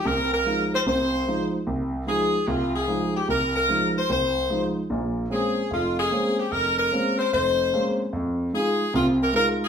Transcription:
0.05 0.40 C2 medium
0.05 0.40 C3 medium
0.05 0.32 A#4 medium
0.34 0.70 A#4 medium
0.45 0.73 F3 soft
0.45 0.73 G#3 soft
0.45 0.73 D#4 soft
0.74 0.80 C5 medium
0.86 1.21 C2 medium
0.86 1.21 C3 medium
0.86 1.50 C5 medium
1.27 1.54 F3 soft
1.27 1.55 G#3 soft
1.27 1.55 D#4 soft
1.67 2.01 C2 medium
2.07 2.34 F3 soft
2.07 2.34 G#3 soft
2.07 2.35 D#4 soft
2.07 2.45 G#4 medium
2.47 2.82 C2 medium
2.47 2.74 F4 medium
2.75 3.12 G#4 medium
2.88 3.15 F3 soft
2.88 3.16 G#3 soft
2.88 3.16 D#4 soft
3.16 3.29 G4 medium
3.28 3.63 C2 medium
3.28 3.54 A#4 medium
3.56 3.92 A#4 loud
3.69 3.96 F3 soft
3.69 3.96 G#3 soft
3.69 3.97 D#4 soft
3.98 4.10 C5 medium
4.09 4.44 C2 medium
4.09 4.73 C5 medium
4.50 4.77 F3 soft
4.50 4.77 G#3 soft
4.50 4.77 D#4 soft
4.90 5.25 A#1 medium
4.90 5.25 A#2 medium
5.30 5.58 G#3 soft
5.30 5.58 A#3 soft
5.30 5.58 C4 soft
5.30 5.58 C#4 soft
5.30 5.69 G#4 medium
5.71 6.05 F1 medium
5.71 5.96 F4 medium
5.99 6.36 G#4 medium
6.11 6.39 G#3 soft
6.11 6.39 A#3 soft
6.11 6.39 C4 soft
6.11 6.39 C#4 medium
6.39 6.52 G4 medium
6.52 6.86 F1 medium
6.52 6.77 A#4 medium
6.79 7.16 A#4 loud
6.92 7.20 G#3 soft
6.92 7.20 A#3 soft
6.92 7.20 C4 soft
6.92 7.20 C#4 soft
7.19 7.31 C5 medium
7.33 7.67 F1 medium
7.33 7.95 C5 medium
7.74 8.01 G#3 soft
7.74 8.01 A#3 soft
7.74 8.01 C4 soft
7.74 8.01 C#4 medium
8.13 8.48 F2 medium
8.53 8.81 G#3 soft
8.53 8.81 D#4 soft
8.53 8.81 F4 soft
8.53 8.92 G#4 medium
8.94 9.28 C2 medium
8.94 9.28 C3 medium
8.94 9.07 F4 medium
9.23 9.34 A#4 medium
9.33 9.61 G#3 soft
9.33 9.61 D#4 soft
9.33 9.62 F4 medium
9.33 9.48 A#4 loud
9.64 9.68 G#4 medium

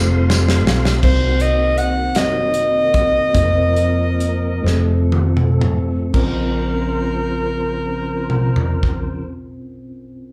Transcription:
0.00 0.66 F1 loud
0.00 0.81 A3 medium
0.00 0.81 C4 medium
0.00 0.82 F4 medium
0.00 0.85 A4 medium
0.00 1.03 A4 medium
0.00 0.82 C5 medium
0.00 1.00 C5 medium
0.00 1.01 F5 medium
0.00 1.02 C6 medium
0.30 0.64 C6 medium
0.30 snare medium
0.30 tambourine medium
0.48 snare medium
0.66 1.00 B1 medium
0.66 1.02 F5 medium
0.66 snare loud
0.85 snare loud
1.03 2.16 C2 medium
1.03 2.12 C3 medium
1.03 3.33 D#3 medium
1.03 4.63 A#3 medium
1.03 1.94 C4 medium
1.03 3.33 C4 medium
1.03 1.94 D#4 medium
1.03 1.94 F#4 medium
1.03 3.34 F#4 medium
1.03 1.94 A#4 medium
1.03 1.43 C5 medium
1.03 1.94 C5 medium
1.03 kick medium
1.03 crash medium
1.40 1.79 D#5 medium
1.40 closed hi-hat soft
1.78 2.18 F#5 medium
1.78 closed hi-hat soft
2.15 3.31 F#1 medium
2.15 3.10 C4 medium
2.15 3.11 D#4 medium
2.15 3.11 F#4 medium
2.15 3.11 A#4 soft
2.15 2.23 C#5 soft
2.15 5.13 D#5 medium
2.15 snare medium
2.15 closed hi-hat medium
2.23 3.14 D#5 medium
2.54 closed hi-hat soft
2.94 kick medium
2.94 closed hi-hat soft
3.33 4.61 F1 medium
3.33 4.62 F3 medium
3.33 4.38 A#3 medium
3.33 4.38 C4 medium
3.33 6.12 C4 soft
3.33 4.39 F4 medium
3.33 3.42 G#4 medium
3.33 4.64 A#4 medium
3.33 4.39 C5 medium
3.33 kick medium
3.33 closed hi-hat medium
3.41 4.42 A#4 medium
3.76 closed hi-hat soft
4.20 closed hi-hat soft
4.62 6.10 F1 medium
4.62 6.12 F3 medium
4.62 5.82 A3 medium
4.62 6.12 A3 soft
4.62 5.83 C4 medium
4.62 5.82 F4 medium
4.62 6.13 A4 medium
4.62 5.83 A4 medium
4.62 5.83 C5 medium
4.67 snare soft
5.12 high tom medium
5.37 mid tom medium
5.61 mid tom medium
6.11 9.26 A#1 medium
6.11 9.25 C#3 soft
6.11 9.25 F3 soft
6.11 9.23 C4 medium
6.11 9.25 C#4 medium
6.11 9.26 F4 medium
6.11 9.25 A#4 medium
6.11 9.26 A#4 medium
6.11 9.25 C5 soft
6.11 kick medium
6.11 crash medium
6.15 9.27 A#4 medium
6.15 9.29 C5 medium
8.30 mid tom soft
8.56 floor tom medium
8.83 kick medium

